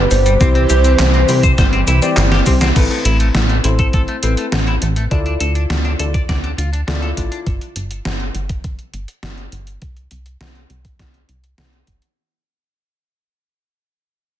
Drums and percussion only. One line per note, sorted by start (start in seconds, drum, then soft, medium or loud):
0.11 open hi-hat medium
0.11 shaker medium
0.26 closed hi-hat medium
0.26 shaker soft
0.41 kick loud
0.41 closed hi-hat medium
0.41 shaker soft
0.55 closed hi-hat soft
0.70 closed hi-hat loud
0.70 shaker medium
0.84 closed hi-hat medium
0.84 shaker soft
0.99 snare loud
0.99 clap loud
0.99 closed hi-hat medium
0.99 shaker soft
1.14 closed hi-hat soft
1.29 open hi-hat medium
1.29 shaker medium
1.43 kick loud
1.43 closed hi-hat medium
1.43 shaker soft
1.58 kick loud
1.58 snare medium
1.58 closed hi-hat medium
1.58 shaker soft
1.73 closed hi-hat soft
1.88 closed hi-hat loud
1.88 shaker medium
2.02 closed hi-hat medium
2.02 shaker soft
2.17 snare medium
2.17 clap loud
2.17 closed hi-hat medium
2.17 shaker soft
2.32 snare medium
2.32 closed hi-hat soft
2.46 kick medium
2.46 open hi-hat medium
2.46 shaker medium
2.61 snare medium
2.61 closed hi-hat medium
2.61 shaker soft
2.76 kick loud
2.76 closed hi-hat medium
2.76 crash medium
2.91 closed hi-hat soft
3.05 closed hi-hat loud
3.20 closed hi-hat medium
3.35 snare loud
3.35 closed hi-hat medium
3.49 closed hi-hat soft
3.64 closed hi-hat loud
3.79 kick loud
3.79 closed hi-hat medium
3.93 kick loud
3.93 closed hi-hat medium
4.08 closed hi-hat soft
4.23 closed hi-hat loud
4.37 closed hi-hat medium
4.52 snare loud
4.52 closed hi-hat medium
4.67 closed hi-hat soft
4.82 closed hi-hat medium
4.96 closed hi-hat medium
5.11 kick loud
5.11 closed hi-hat medium
5.26 closed hi-hat soft
5.40 closed hi-hat loud
5.55 closed hi-hat medium
5.70 snare loud
5.70 closed hi-hat medium
5.85 closed hi-hat soft
5.99 closed hi-hat loud
6.14 kick loud
6.14 closed hi-hat medium
6.29 kick loud
6.29 snare medium
6.29 closed hi-hat medium
6.44 closed hi-hat soft
6.58 closed hi-hat loud
6.73 closed hi-hat soft
6.88 snare loud
6.88 closed hi-hat medium
7.03 closed hi-hat soft
7.17 kick medium
7.17 closed hi-hat medium
7.32 closed hi-hat medium
7.47 kick loud
7.47 closed hi-hat soft
7.61 closed hi-hat soft
7.76 closed hi-hat medium
7.91 closed hi-hat medium
8.05 snare loud
8.05 closed hi-hat medium
8.20 closed hi-hat soft
8.35 closed hi-hat loud
8.49 kick loud
8.49 closed hi-hat medium
8.64 kick loud
8.64 closed hi-hat medium
8.79 closed hi-hat soft
8.94 closed hi-hat loud
9.08 closed hi-hat soft
9.23 snare loud
9.23 closed hi-hat medium
9.38 closed hi-hat soft
9.52 closed hi-hat medium
9.67 closed hi-hat medium
9.82 kick loud
9.82 closed hi-hat medium
9.97 closed hi-hat soft
10.11 closed hi-hat medium
10.26 closed hi-hat medium
10.41 snare loud
10.41 closed hi-hat medium
10.55 closed hi-hat soft
10.70 closed hi-hat medium
10.85 kick loud
10.85 closed hi-hat medium
10.99 kick loud
10.99 snare medium
10.99 closed hi-hat soft
11.14 closed hi-hat soft
11.29 closed hi-hat medium
11.44 closed hi-hat soft
11.58 snare loud
11.58 closed hi-hat soft
11.73 closed hi-hat soft
11.87 kick medium
11.87 closed hi-hat medium
12.02 closed hi-hat soft